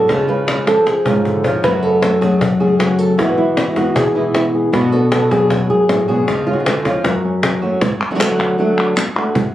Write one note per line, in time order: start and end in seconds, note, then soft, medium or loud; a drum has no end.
0.08 0.27 C#3 medium
0.08 0.67 C#3 medium
0.08 0.27 F3 medium
0.08 0.28 G#3 medium
0.08 0.28 C#4 medium
0.08 0.26 F4 medium
0.08 0.28 G#4 medium
0.08 cajon bass medium
0.08 cajon slap soft
0.28 0.46 G#3 soft
0.28 0.47 C#4 soft
0.28 0.46 F4 soft
0.28 0.67 B4 medium
0.47 0.85 F3 soft
0.47 0.85 G#3 soft
0.47 0.86 C#4 soft
0.47 1.05 F4 soft
0.47 0.86 F4 soft
0.47 cajon slap medium
0.67 1.44 F3 medium
0.67 0.86 A4 medium
0.67 cajon slap medium
0.86 1.63 G#4 medium
0.86 muted nylon-string guitar stroke soft
0.86 cajon slap medium
1.05 1.61 G#2 soft
1.05 1.44 G#3 soft
1.05 1.44 C#4 soft
1.05 1.43 F4 soft
1.05 1.62 F4 soft
1.05 cajon bass medium
1.25 1.45 D3 medium
1.25 cajon bass medium
1.44 1.64 F3 medium
1.44 1.64 G#3 soft
1.44 1.63 C#4 soft
1.44 1.63 F4 soft
1.44 cajon bass medium
1.63 2.01 F#2 medium
1.63 3.19 F#2 medium
1.63 2.02 C#3 soft
1.63 2.01 F#3 medium
1.63 2.02 A3 medium
1.63 2.02 C#4 medium
1.63 2.02 F#4 medium
1.63 1.83 B4 medium
1.63 cajon bass medium
1.63 cajon slap soft
1.83 2.01 A4 medium
2.02 2.21 F#3 soft
2.02 2.21 A3 soft
2.02 2.21 C#4 soft
2.02 2.20 F#4 medium
2.02 2.21 A4 medium
2.02 cajon slap medium
2.21 3.16 F#3 medium
2.21 2.40 F#3 soft
2.21 2.40 A3 soft
2.21 2.41 C#4 soft
2.21 2.40 F#4 soft
2.21 2.41 G#4 medium
2.21 cajon bass medium
2.21 cajon slap soft
2.41 2.60 F#4 medium
2.41 muted nylon-string guitar stroke soft
2.41 cajon bass loud
2.60 3.16 C#3 soft
2.60 3.18 F#3 soft
2.60 3.18 A3 soft
2.60 3.18 C#4 soft
2.60 3.18 F#4 soft
2.60 2.79 G#4 medium
2.79 2.99 F#4 medium
2.79 cajon slap medium
2.99 3.18 A4 medium
3.17 3.56 E2 medium
3.17 3.56 B2 medium
3.17 3.55 E3 medium
3.17 4.73 E3 medium
3.17 3.56 G#3 medium
3.17 3.57 B3 medium
3.17 3.57 E4 medium
3.17 3.75 F#4 medium
3.17 cajon bass medium
3.17 cajon slap soft
3.38 4.15 E4 medium
3.56 3.75 E3 soft
3.56 3.76 G#3 soft
3.56 3.76 B3 soft
3.56 3.75 E4 medium
3.56 cajon slap medium
3.76 3.95 E3 soft
3.76 3.95 G#3 soft
3.76 4.71 B3 soft
3.76 3.95 B3 soft
3.76 3.95 E4 soft
3.76 3.96 F#4 medium
3.76 cajon bass medium
3.76 cajon slap soft
3.95 4.53 G#4 medium
3.95 muted nylon-string guitar stroke medium
3.95 cajon bass medium
4.15 4.72 B2 medium
4.15 4.73 E3 soft
4.15 4.73 G#3 soft
4.15 4.73 B3 soft
4.15 4.72 E4 soft
4.15 4.34 E4 soft
4.35 4.71 E4 soft
4.35 cajon slap medium
4.55 4.71 G#4 soft
4.72 4.91 B2 medium
4.72 5.70 B2 medium
4.72 4.92 F#3 medium
4.72 4.92 B3 medium
4.72 4.92 D4 medium
4.72 4.91 F#4 medium
4.72 4.92 B4 medium
4.72 cajon bass medium
4.72 cajon slap soft
4.92 5.11 B3 soft
4.92 5.11 D4 soft
4.92 5.11 F#4 soft
4.92 5.11 A4 medium
5.11 5.30 F#3 soft
5.11 5.30 B3 soft
5.11 5.30 D4 soft
5.11 5.29 F#4 medium
5.11 5.31 A4 medium
5.11 cajon slap medium
5.30 6.25 F#3 medium
5.30 5.50 B3 soft
5.30 5.50 D4 soft
5.30 5.49 F#4 soft
5.30 5.51 G#4 medium
5.30 cajon bass medium
5.30 cajon slap soft
5.50 5.69 F#4 medium
5.50 muted nylon-string guitar stroke medium
5.50 cajon bass medium
5.50 cajon slap soft
5.70 5.89 F#2 soft
5.70 6.08 G#4 medium
5.89 6.08 A2 medium
5.89 cajon slap medium
6.08 6.27 B2 medium
6.08 6.28 B3 soft
6.08 6.27 D4 soft
6.08 6.27 F#4 soft
6.08 6.53 G#4 medium
6.27 6.46 C#3 medium
6.27 6.66 C#3 medium
6.27 6.46 F3 medium
6.27 6.46 G#3 medium
6.27 6.47 C#4 medium
6.27 6.45 F4 medium
6.27 cajon bass medium
6.27 cajon slap soft
6.47 6.65 G#3 soft
6.47 6.66 C#4 soft
6.47 6.65 F4 soft
6.47 6.59 F4 medium
6.53 6.61 F#4 medium
6.60 7.04 F4 medium
6.66 6.86 D3 soft
6.66 6.84 F3 soft
6.66 6.85 G#3 soft
6.66 6.85 C#4 soft
6.66 6.83 F4 soft
6.66 cajon slap medium
6.85 7.05 F3 medium
6.85 7.04 G#3 soft
6.85 7.04 C#4 soft
6.85 7.04 F4 soft
6.85 cajon bass medium
6.85 cajon slap soft
7.04 7.81 F#2 medium
7.04 7.81 F#4 medium
7.04 muted nylon-string guitar stroke soft
7.04 cajon bass medium
7.04 cajon slap soft
7.25 7.43 C#4 soft
7.43 7.82 C#4 soft
7.43 cajon slap medium
7.62 7.79 F#3 medium
7.62 7.82 F#3 soft
7.62 7.81 A3 soft
7.62 7.81 C#4 soft
7.62 7.81 F#4 soft
7.81 muted nylon-string guitar stroke medium
7.81 cajon bass loud
8.01 cajon slap soft
8.11 8.14 F#3 medium
8.11 8.14 A3 medium
8.11 8.15 D4 medium
8.11 8.15 F#4 medium
8.15 8.19 F#3 medium
8.15 8.19 A3 medium
8.15 8.19 D4 medium
8.15 8.20 F#4 medium
8.19 8.57 D3 medium
8.19 8.57 F#3 medium
8.19 8.58 A3 medium
8.19 8.58 D4 medium
8.19 8.58 F#4 medium
8.19 cajon slap loud
8.19 clap medium
8.39 cajon bass medium
8.39 cajon slap soft
8.39 clap soft
8.58 8.95 D3 medium
8.58 8.95 F#3 medium
8.58 8.96 A3 medium
8.58 8.96 D4 medium
8.58 8.96 F#4 medium
8.96 muted nylon-string guitar stroke medium
8.96 cajon slap medium
8.96 clap medium
9.16 9.35 A3 soft
9.16 9.35 D4 soft
9.16 9.34 F#4 medium
9.35 muted nylon-string guitar stroke medium
9.35 cajon bass medium